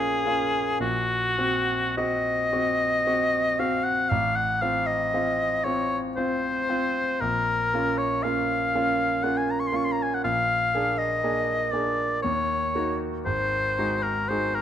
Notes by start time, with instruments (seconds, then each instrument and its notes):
Already playing: grand piano A#3 C#4 F4, oboe G#4
0.26 grand piano A#3 C#4 F4
0.80 grand piano A#1, oboe F#4
1.38 grand piano C4 F#4
1.97 grand piano C4 F#4, oboe D#5
2.53 grand piano C4 F#4
3.07 grand piano C4 F#4
3.59 grand piano C4 F#4, oboe F5
3.84 oboe F#5
4.10 grand piano A1, oboe F5
4.36 oboe F#5
4.62 grand piano C4 F4, oboe F5
4.87 oboe D#5
5.14 grand piano C4 F4
5.64 grand piano C4 F4, oboe C#5
6.16 grand piano C4 F4, oboe C5
6.69 grand piano C4 F4
7.20 grand piano A#1, oboe A#4
7.74 grand piano A#3 C#4 F4
7.98 oboe C#5
8.23 grand piano A#3 C#4 F4, oboe F5
8.75 grand piano A#3 C#4 F4
9.23 grand piano A#3 C#4 F4, oboe F#5
9.37 oboe G#5
9.51 oboe A#5
9.60 oboe C#6
9.67 oboe C6
9.72 grand piano A#3 C#4 F4
9.76 oboe C#6
9.84 oboe C6
9.92 oboe A#5
10.03 oboe G#5
10.14 oboe F#5
10.24 grand piano A#1, oboe F5
10.75 grand piano A#3 D4 G#4
10.98 oboe D#5
11.24 grand piano A#3 D4 G#4
11.72 grand piano A#3 D4 G#4, oboe D5
12.23 grand piano D#2, oboe C#5
12.75 grand piano A#3 D#4 F#4
13.26 grand piano G#1, oboe C5
13.78 grand piano G#3 D#4 F#4
14.03 oboe A#4
14.28 grand piano G#3 D#4 F#4, oboe C5
14.54 oboe A#4